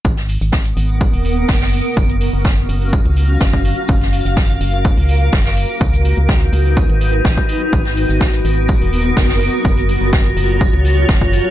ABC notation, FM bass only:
X:1
M:4/4
L:1/16
Q:1/4=125
K:F#
V:1 name="FM bass" clef=bass
G,,,3 G,,,3 G,,,3 D,,,3 F,,,3 z | F,,,3 F,,,3 F,,,3 C,,3 F,,,3 z | F,,,3 F,,,3 F,,,3 C,,3 F,,,3 z | C,,3 C,,3 C,,3 G,,,3 G,,, z3 |
G,,,3 G,,,3 G,,,3 D,,,3 F,,,3 z | F,,,3 F,,,3 F,,,3 C,,3 F,,,3 z |]